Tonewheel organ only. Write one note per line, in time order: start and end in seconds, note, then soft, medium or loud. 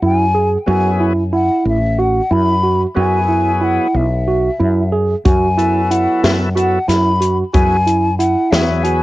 0.66 1.13 F#3 medium
0.66 1.13 B3 medium
0.66 1.13 E4 medium
0.66 1.13 G#4 medium
2.95 3.87 F#3 medium
2.95 3.87 B3 medium
2.95 3.88 E4 medium
2.95 3.88 G#4 medium
5.58 6.49 F#3 medium
5.58 6.49 B3 medium
5.58 6.49 E4 medium
5.58 6.50 A4 medium
6.55 6.78 F#3 medium
6.55 6.79 B3 medium
6.55 6.79 E4 medium
6.55 6.79 A4 medium
7.53 7.76 F#3 medium
7.53 7.77 B3 medium
7.53 7.77 E4 medium
7.53 7.77 G#4 medium
8.52 9.03 F#3 medium
8.52 9.03 B3 medium
8.52 9.03 E4 medium
8.52 9.03 G#4 medium